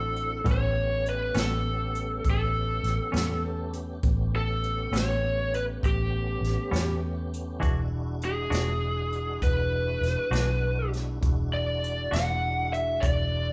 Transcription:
Already playing: A1 C4 D4 E4 F#4 A4
0.16 closed hi-hat
0.44 A1 A2 G3 A3 B3 C#4 G4, kick, closed hi-hat
0.51 C#5
1.06 B4, closed hi-hat
1.34 A1 A2 G3 B3 C#4, snare, closed hi-hat
1.39 A4
1.95 closed hi-hat
2.24 A1, kick, closed hi-hat
2.30 A4
2.83 A1, snare, closed hi-hat
3.12 E2 A2 G3 B3 C#4, closed hi-hat
3.16 snare
3.73 closed hi-hat
4.03 A1 A3 B3 C#4 G4, kick, closed hi-hat
4.36 A4
4.63 closed hi-hat
4.92 A1 A2 G3 B3 C#4, snare, closed hi-hat
4.96 C#5
5.54 B4, closed hi-hat
5.83 A1 G4, kick, closed hi-hat
6.41 A1, closed hi-hat
6.47 snare
6.71 E2 A2 G3 B3 C#4, closed hi-hat
6.76 snare
7.33 closed hi-hat
7.60 E1 E3 G#3 D4 E4 F#4, kick, closed hi-hat
8.21 G#4, closed hi-hat
8.50 E1 E3 G#3 D4 F#4, closed hi-hat
8.54 snare
9.12 closed hi-hat
9.42 E1 B4, kick, closed hi-hat
10.01 E1, closed hi-hat
10.06 snare
10.31 B1 E3 G#3 D4 F#4, closed hi-hat
10.35 snare
10.93 snare, closed hi-hat
11.21 E1 G#3 D4 E4 F#4, kick, closed hi-hat
11.54 D5
11.84 closed hi-hat
12.11 E1 E3 G#3 D4 F#4 F#5, closed hi-hat
12.16 snare
12.73 E5, closed hi-hat
13.01 E1 D5, kick, closed hi-hat

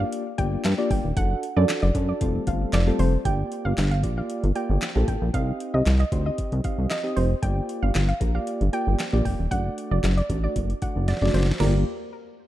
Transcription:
Already playing: A#3 D4 F4 G4 D5
0.12 closed hi-hat
0.38 G1 A#3 D4 F4 G4 D5 G5, kick, closed hi-hat
0.65 G2, snare, clap, closed hi-hat
0.78 A#3 D4 F4 G4 D5
0.91 G1 G5, kick, open hi-hat
1.05 D#1
1.16 F#1 D4 F#4 A4 F#5, kick, closed hi-hat
1.43 closed hi-hat
1.56 F#2 D4 F#4 A4 D5
1.69 snare, clap, closed hi-hat
1.82 F#1 D5
1.95 F#2 D4 F#4 A4, kick, closed hi-hat
2.09 D5
2.21 F1 G3 A3 C4 F4 A4, kick, closed hi-hat
2.47 G1 G3 A3 C4 F4 A4 F5, kick, closed hi-hat
2.73 F1 D5, snare, clap, closed hi-hat
2.87 G3 A3 C4 F4 A4
2.99 F1 C5, open hi-hat
3.25 G1 A#3 F4 G4 D5 G5, kick, closed hi-hat
3.52 closed hi-hat
3.65 G1 F5
3.77 G1, snare, clap, closed hi-hat
3.91 F5, closed hi-hat
4.03 A#1 A#3 F4 G4 D5, kick, closed hi-hat
4.17 A#3 F4 G4 D5 F5
4.30 closed hi-hat
4.44 G1, closed hi-hat
4.55 A#3 F4 G4 D5 G5, closed hi-hat
4.70 G1
4.82 snare, clap, closed hi-hat
4.95 A#1 A#3 F4 G4 A4
5.08 A1 G5, kick, closed hi-hat
5.22 A#1
5.33 C2 C4 D#4 G4 D#5 F5, kick, closed hi-hat
5.60 closed hi-hat
5.74 C2 D#5
5.86 C2, snare, clap, closed hi-hat
6.00 D#5, closed hi-hat
6.12 D2 C4 D#4 G4 C5, kick, closed hi-hat
6.25 C4 D#4 G4 D#5
6.38 kick, closed hi-hat
6.52 C2, closed hi-hat
6.64 C4 D#4 G4 D#5 F5, kick, closed hi-hat
6.78 C2
6.90 D#5, snare, clap, closed hi-hat
7.04 C4 D#4 G4 D#5
7.16 F1 C5, open hi-hat
7.42 G1 A#3 F4 G4 D5 G5, kick, closed hi-hat
7.69 closed hi-hat
7.83 G1 F5
7.95 G1, snare, clap, closed hi-hat
8.08 F5, closed hi-hat
8.20 A#1 A#3 F4 G4 A#4, kick, closed hi-hat
8.34 A#3 F4 G4 D5 F5
8.47 closed hi-hat
8.61 G1, closed hi-hat
8.73 A#3 F4 G4 D5 G5, closed hi-hat
8.87 G1
8.99 snare, clap, closed hi-hat
9.13 A#1 A#3 F4 G4 D5
9.25 F1 G5, kick, open hi-hat
9.39 D#1
9.51 F#1 A3 D4 F#4 D5 F#5, kick, closed hi-hat
9.78 closed hi-hat
9.91 F#1 D5
10.04 F#1, snare, clap, closed hi-hat
10.17 D5, closed hi-hat
10.29 A1 A3 D4 F#4 D5, kick, closed hi-hat
10.43 A3 D4 F#4 D5
10.56 F#1, kick, closed hi-hat
10.70 closed hi-hat
10.82 F#1 A3 D4 F#4 D5 F#5, kick, closed hi-hat
10.96 F#1
11.08 D5, snare, closed hi-hat
11.17 snare
11.22 F#1 A3 D4 F#4 D5, snare
11.34 F#1 C5, snare, open hi-hat
11.43 snare
11.51 snare
11.60 G1 A#3 F4 G4 A#4 D5, snare, floor tom, crash

